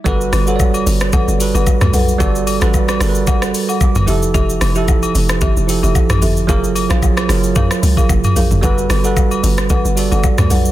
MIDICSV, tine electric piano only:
0, 0, Header, 1, 2, 480
1, 0, Start_track
1, 0, Key_signature, 1, "major"
1, 0, Tempo, 535714
1, 53, Time_signature, 4, 2, 24, 8
1, 9603, End_track
2, 0, Start_track
2, 0, Title_t, "Tine electric piano"
2, 0, Program_c, 0, 4
2, 39, Note_on_c, 0, 55, 111
2, 49, Note_on_c, 0, 66, 105
2, 59, Note_on_c, 0, 69, 101
2, 70, Note_on_c, 0, 71, 127
2, 199, Control_c, 0, 64, 127
2, 339, Note_off_c, 0, 55, 0
2, 344, Note_off_c, 0, 66, 0
2, 349, Note_off_c, 0, 69, 0
2, 354, Note_off_c, 0, 71, 0
2, 411, Note_on_c, 0, 55, 90
2, 421, Note_on_c, 0, 66, 79
2, 432, Note_on_c, 0, 69, 82
2, 442, Note_on_c, 0, 73, 79
2, 485, Note_off_c, 0, 73, 0
2, 499, Note_on_c, 0, 74, 100
2, 1085, Note_off_c, 0, 55, 0
2, 1090, Note_off_c, 0, 66, 0
2, 1095, Note_off_c, 0, 69, 0
2, 1129, Note_off_c, 0, 74, 0
2, 1239, Note_on_c, 0, 55, 85
2, 1250, Note_on_c, 0, 66, 79
2, 1260, Note_on_c, 0, 69, 82
2, 1270, Note_on_c, 0, 71, 96
2, 1832, Note_off_c, 0, 55, 0
2, 1837, Note_off_c, 0, 66, 0
2, 1842, Note_off_c, 0, 69, 0
2, 1847, Note_off_c, 0, 71, 0
2, 1958, Note_on_c, 0, 55, 118
2, 1968, Note_on_c, 0, 66, 107
2, 1979, Note_on_c, 0, 69, 108
2, 1988, Note_on_c, 0, 74, 123
2, 2258, Note_off_c, 0, 55, 0
2, 2263, Note_off_c, 0, 66, 0
2, 2269, Note_off_c, 0, 69, 0
2, 2274, Note_off_c, 0, 74, 0
2, 2331, Note_on_c, 0, 55, 90
2, 2342, Note_on_c, 0, 66, 79
2, 2351, Note_on_c, 0, 69, 80
2, 2362, Note_on_c, 0, 71, 97
2, 2621, Note_off_c, 0, 55, 0
2, 2627, Note_off_c, 0, 66, 0
2, 2631, Note_off_c, 0, 69, 0
2, 2637, Note_off_c, 0, 71, 0
2, 2679, Note_on_c, 0, 55, 89
2, 2689, Note_on_c, 0, 66, 77
2, 2699, Note_on_c, 0, 69, 81
2, 2710, Note_on_c, 0, 70, 75
2, 2765, Note_off_c, 0, 70, 0
2, 2768, Note_on_c, 0, 71, 93
2, 3412, Note_on_c, 0, 86, 77
2, 3459, Note_off_c, 0, 55, 0
2, 3464, Note_off_c, 0, 66, 0
2, 3469, Note_off_c, 0, 69, 0
2, 3503, Note_off_c, 0, 71, 0
2, 3638, Note_on_c, 0, 53, 98
2, 3648, Note_on_c, 0, 64, 88
2, 3659, Note_on_c, 0, 67, 91
2, 3665, Control_c, 0, 64, 0
2, 3669, Note_on_c, 0, 69, 113
2, 3830, Control_c, 0, 64, 127
2, 3859, Note_off_c, 0, 86, 0
2, 4125, Note_off_c, 0, 53, 0
2, 4130, Note_off_c, 0, 64, 0
2, 4136, Note_off_c, 0, 67, 0
2, 4141, Note_off_c, 0, 69, 0
2, 4250, Note_on_c, 0, 53, 88
2, 4261, Note_on_c, 0, 64, 84
2, 4271, Note_on_c, 0, 67, 84
2, 4282, Note_on_c, 0, 69, 98
2, 4925, Note_off_c, 0, 53, 0
2, 4930, Note_off_c, 0, 64, 0
2, 4935, Note_off_c, 0, 67, 0
2, 4941, Note_off_c, 0, 69, 0
2, 5079, Note_on_c, 0, 53, 89
2, 5089, Note_on_c, 0, 64, 81
2, 5099, Note_on_c, 0, 67, 80
2, 5109, Note_on_c, 0, 69, 97
2, 5671, Note_off_c, 0, 53, 0
2, 5677, Note_off_c, 0, 64, 0
2, 5681, Note_off_c, 0, 67, 0
2, 5686, Note_off_c, 0, 69, 0
2, 5798, Note_on_c, 0, 54, 114
2, 5808, Note_on_c, 0, 65, 101
2, 5819, Note_on_c, 0, 68, 107
2, 5826, Control_c, 0, 64, 0
2, 5829, Note_on_c, 0, 70, 127
2, 5965, Control_c, 0, 64, 127
2, 6098, Note_off_c, 0, 54, 0
2, 6103, Note_off_c, 0, 65, 0
2, 6109, Note_off_c, 0, 68, 0
2, 6114, Note_off_c, 0, 70, 0
2, 6170, Note_on_c, 0, 54, 88
2, 6180, Note_on_c, 0, 65, 81
2, 6190, Note_on_c, 0, 68, 81
2, 6201, Note_on_c, 0, 73, 97
2, 6461, Note_off_c, 0, 54, 0
2, 6466, Note_off_c, 0, 65, 0
2, 6471, Note_off_c, 0, 68, 0
2, 6476, Note_off_c, 0, 73, 0
2, 6519, Note_on_c, 0, 54, 88
2, 6529, Note_on_c, 0, 65, 80
2, 6539, Note_on_c, 0, 68, 78
2, 6550, Note_on_c, 0, 70, 97
2, 7299, Note_off_c, 0, 54, 0
2, 7304, Note_off_c, 0, 65, 0
2, 7309, Note_off_c, 0, 68, 0
2, 7314, Note_off_c, 0, 70, 0
2, 7717, Note_on_c, 0, 55, 112
2, 7727, Note_on_c, 0, 66, 99
2, 7737, Note_on_c, 0, 69, 107
2, 7745, Control_c, 0, 64, 0
2, 7748, Note_on_c, 0, 71, 124
2, 7892, Control_c, 0, 64, 127
2, 8018, Note_off_c, 0, 55, 0
2, 8023, Note_off_c, 0, 66, 0
2, 8028, Note_off_c, 0, 69, 0
2, 8033, Note_off_c, 0, 71, 0
2, 8091, Note_on_c, 0, 55, 90
2, 8100, Note_on_c, 0, 66, 81
2, 8111, Note_on_c, 0, 69, 78
2, 8122, Note_on_c, 0, 71, 97
2, 8765, Note_off_c, 0, 55, 0
2, 8770, Note_off_c, 0, 66, 0
2, 8775, Note_off_c, 0, 69, 0
2, 8780, Note_off_c, 0, 71, 0
2, 8919, Note_on_c, 0, 55, 89
2, 8929, Note_on_c, 0, 66, 79
2, 8939, Note_on_c, 0, 69, 80
2, 8950, Note_on_c, 0, 74, 99
2, 9512, Note_off_c, 0, 55, 0
2, 9517, Note_off_c, 0, 66, 0
2, 9522, Note_off_c, 0, 69, 0
2, 9527, Note_off_c, 0, 74, 0
2, 9603, End_track
0, 0, End_of_file